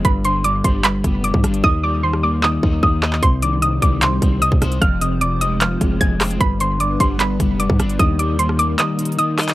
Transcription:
0.05 808-style bass G1, clean electric guitar G2, synth pluck B5, kick, closed hi-hat
0.25 clean electric guitar D3, synth pluck C6, closed hi-hat
0.44 clean electric guitar G2, synth pluck D6, closed hi-hat
0.64 808-style bass G1, clean electric guitar G3, synth pluck C6, kick, closed hi-hat
0.84 clean electric guitar G2, synth pluck B5, clap, closed hi-hat
1.03 808-style bass F1, clean electric guitar B3, kick, closed hi-hat
1.24 clean electric guitar G2, synth pluck D6, closed hi-hat
1.34 808-style bass G2, kick
1.43 808-style bass G1, clean electric guitar D4, cross-stick, closed hi-hat
1.54 closed hi-hat
1.63 808-style bass D#2, clean electric guitar D#3, synth pluck D#6, kick
1.83 clean electric guitar G3, synth pluck D6
2.03 clean electric guitar D#3, synth pluck C6
2.13 cross-stick
2.23 clean electric guitar A#3, synth pluck D6
2.43 clean electric guitar D#3, synth pluck D#6, clap
2.63 808-style bass D#2, clean electric guitar D#4, kick
2.83 808-style bass D#2, clean electric guitar D#3, synth pluck D#6, kick
3.03 clean electric guitar D#5, cross-stick, clap
3.13 clap
3.23 808-style bass C2, clean electric guitar C3, analog synth pad G3 C4 D#4 C5, synth pluck C6, kick, closed hi-hat
3.42 clean electric guitar D#3, synth pluck D6, closed hi-hat
3.62 clean electric guitar C3, synth pluck D#6, closed hi-hat
3.82 808-style bass C2, clean electric guitar G3, synth pluck D6, kick, closed hi-hat
4.02 clean electric guitar C3, synth pluck C6, clap, closed hi-hat
4.22 808-style bass C2, clean electric guitar C4, kick, closed hi-hat
4.42 clean electric guitar C3, synth pluck D#6, closed hi-hat
4.52 808-style bass C2, kick
4.62 808-style bass C2, clean electric guitar C5, cross-stick, closed hi-hat
4.72 closed hi-hat
4.81 808-style bass F1, clean electric guitar F2, analog synth pad G#3 F4, synth pluck F6, kick, closed hi-hat
5.01 clean electric guitar C3, synth pluck D#6, closed hi-hat
5.21 clean electric guitar F2, synth pluck D6, closed hi-hat
5.41 clean electric guitar F3, synth pluck D#6, closed hi-hat
5.61 clean electric guitar F2, synth pluck F6, clap, closed hi-hat
5.81 808-style bass F1, clean electric guitar G#3, kick, closed hi-hat
6.00 808-style bass F1, clean electric guitar F2, synth pluck G#6, kick, closed hi-hat
6.20 clean electric guitar C4, cross-stick, clap, closed hi-hat, open hi-hat
6.31 closed hi-hat
6.40 808-style bass G1, clean electric guitar G2, analog synth pad G3 B3 D4 B4, synth pluck B5, kick, closed hi-hat
6.60 clean electric guitar D3, synth pluck C6, closed hi-hat
6.80 clean electric guitar G2, synth pluck D6, closed hi-hat
7.00 808-style bass G1, clean electric guitar G3, synth pluck C6, kick, closed hi-hat
7.20 clean electric guitar G2, synth pluck B5, clap, closed hi-hat
7.39 808-style bass F1, clean electric guitar B3, kick, closed hi-hat
7.59 clean electric guitar G2, synth pluck D6, closed hi-hat
7.70 808-style bass G2, kick
7.79 808-style bass G1, clean electric guitar D4, cross-stick, closed hi-hat
7.89 closed hi-hat
7.99 808-style bass D#2, clean electric guitar D#3, analog synth pad A#3 D#4 A#4, synth pluck D#6, kick, closed hi-hat
8.19 clean electric guitar G3, synth pluck D6, closed hi-hat
8.39 clean electric guitar D#3, synth pluck C6, closed hi-hat
8.49 cross-stick
8.59 clean electric guitar A#3, synth pluck D6, closed hi-hat
8.79 clean electric guitar D#3, synth pluck D#6, clap, closed hi-hat
8.99 clean electric guitar D#4, closed hi-hat
9.05 closed hi-hat
9.12 closed hi-hat
9.19 clean electric guitar D#3, synth pluck D#6, closed hi-hat
9.38 clean electric guitar D#5, cross-stick, clap, closed hi-hat, open hi-hat
9.43 closed hi-hat
9.48 clap, closed hi-hat

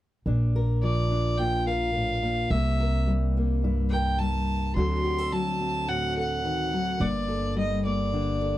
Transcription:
0.26 upright bass A#1, steel-string acoustic guitar A#2 D4
0.56 steel-string acoustic guitar A#4
0.83 steel-string acoustic guitar F3, fiddle D5
1.11 steel-string acoustic guitar D4
1.38 steel-string acoustic guitar A#2 F4, fiddle G5
1.67 steel-string acoustic guitar A#4, fiddle F5
1.94 steel-string acoustic guitar A2
2.22 steel-string acoustic guitar A#2
2.50 upright bass C2, steel-string acoustic guitar C3 A#3, fiddle E5
2.80 steel-string acoustic guitar A#4
3.07 steel-string acoustic guitar G3
3.37 steel-string acoustic guitar A#3
3.64 steel-string acoustic guitar G2 E4
3.91 steel-string acoustic guitar A#4, fiddle G5
4.19 steel-string acoustic guitar G3, fiddle A5
4.76 upright bass D2, steel-string acoustic guitar D3 F#3 C4 F#4 A4, fiddle C6
5.04 steel-string acoustic guitar G4
5.18 steel-string acoustic guitar A4
5.32 steel-string acoustic guitar F#3, fiddle A5
5.61 steel-string acoustic guitar C4
5.88 steel-string acoustic guitar A2 F#4, fiddle F#5
6.17 steel-string acoustic guitar A4, fiddle F#5
6.44 steel-string acoustic guitar D#3
6.73 steel-string acoustic guitar F#3
7.00 upright bass G1, steel-string acoustic guitar G2 A#3, fiddle D5
7.28 steel-string acoustic guitar A4
7.56 steel-string acoustic guitar G3, fiddle D#5
7.85 steel-string acoustic guitar A#3, fiddle D5
8.13 steel-string acoustic guitar D3 D4
8.41 steel-string acoustic guitar A4

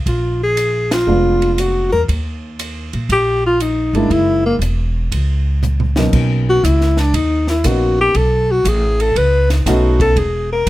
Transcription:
0.06 upright bass A#1, alto saxophone F4, kick, ride
0.43 alto saxophone G#4
0.57 hi-hat pedal, ride
0.91 alto saxophone F4, snare, ride
1.07 upright bass F1, grand piano G#3 B3 D4 F4
1.42 ride
1.58 alto saxophone F#4, hi-hat pedal, ride
1.92 upright bass E2, alto saxophone A#4
2.08 upright bass D#2, kick, ride
2.59 hi-hat pedal, ride
2.93 upright bass A#2, ride
3.09 upright bass A#1, alto saxophone G4, kick, ride
3.46 alto saxophone F4
3.60 alto saxophone D#4, hi-hat pedal, ride
3.93 upright bass G1, grand piano G#3 A#3 D#4 E4, alto saxophone D4, ride
4.10 upright bass F#1, alto saxophone E4, kick, ride
4.46 alto saxophone A#3
4.59 upright bass E1, hi-hat pedal, ride
5.12 upright bass C#2, kick, ride
5.63 floor tom, hi-hat pedal
5.80 floor tom
5.96 grand piano B2 F#3 A#3 C#4 D#4, snare
6.13 upright bass B1, kick, crash
6.50 alto saxophone F#4
6.63 upright bass C#2, alto saxophone E4, kick, hi-hat pedal, ride
6.81 snare
6.97 alto saxophone D4, snare, ride
7.14 upright bass D#2, alto saxophone D#4, kick, ride
7.47 alto saxophone E4, snare
7.64 upright bass A#1, grand piano A#3 B3 C#4 D#4 F#4, alto saxophone F#4, kick, hi-hat pedal, ride
8.01 alto saxophone G4
8.14 upright bass B1, alto saxophone A4, kick, ride
8.52 alto saxophone F#4
8.64 upright bass A1, alto saxophone G#4, kick, hi-hat pedal, ride
9.00 alto saxophone A4, ride
9.16 upright bass C#2, alto saxophone B4, kick, ride
9.50 alto saxophone D#4, snare, ride
9.66 upright bass B1, grand piano A3 B3 C#4 D#4 F#4, alto saxophone F#4, kick, snare, hi-hat pedal, ride
10.00 alto saxophone A4, kick, ride
10.16 upright bass E1, alto saxophone G#4, kick, ride
10.52 alto saxophone A#4

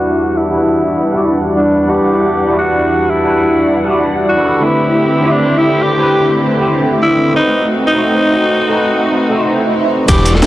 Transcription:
Already playing: string section E2 G3 D4 F#5, tine electric piano G3 D4 E4 F#4 B4 D5 F#5, alto saxophone F#4
0.37 alto saxophone E4
0.51 tine electric piano G3 D4 E4
0.56 tine electric piano F#4 B4
1.11 tine electric piano G3 D4 E4
1.16 tine electric piano F#4 D5
1.57 alto saxophone D4
1.87 tine electric piano G3 D4 E4, alto saxophone G4
1.92 tine electric piano B4 F#5
2.47 tine electric piano G3 D4 E4
2.52 tine electric piano F#4 D5
2.59 alto saxophone F#4
3.10 alto saxophone E4
3.24 tine electric piano G3 D4 E4
3.28 tine electric piano F#4 B4
3.84 tine electric piano G3 D4 E4
3.89 tine electric piano F#4 D5
4.29 alto saxophone F#4
4.37 tine electric piano G3 D4 E4 F#4 A4
4.44 tine electric piano G3 D4 E4 F#4 A4
4.60 tine electric piano D3 A3 C4, string section D3 A3 C4 E4 G4, alto saxophone E4
4.64 tine electric piano E4 G4 B4
5.20 tine electric piano D3 A3 C4 E4
5.25 tine electric piano G4 C5
5.32 alto saxophone D4
5.58 alto saxophone E4
5.83 alto saxophone G4
5.97 tine electric piano D3 A3 C4 E4
6.02 tine electric piano G4 B4
6.57 tine electric piano D3 A3 C4 E4
6.62 tine electric piano G4 C5
7.02 alto saxophone E4
7.33 tine electric piano A3 C4 D#4, string section C4 D#4 F#4, alto saxophone D#4
7.38 tine electric piano F#4 B4
7.87 alto saxophone D#4
7.93 tine electric piano A3 C4 D#4
7.98 tine electric piano F#4 C5
8.69 tine electric piano A3 C4 D#4
8.74 tine electric piano F#4 B4
9.29 tine electric piano A3 C4 D#4
9.34 tine electric piano F#4 C5
9.40 swell
10.05 detuned saw bass E1, tine electric piano G3 D4 E4, string section G3 D5 F#5, alto saxophone G4, kick, closed hi-hat, crash, ride, impact, shaker
10.10 tine electric piano F#4 B4
10.18 ride
10.25 closed hi-hat, ride
10.34 alto saxophone A4, snare
10.42 snare, closed hi-hat, ride, shaker

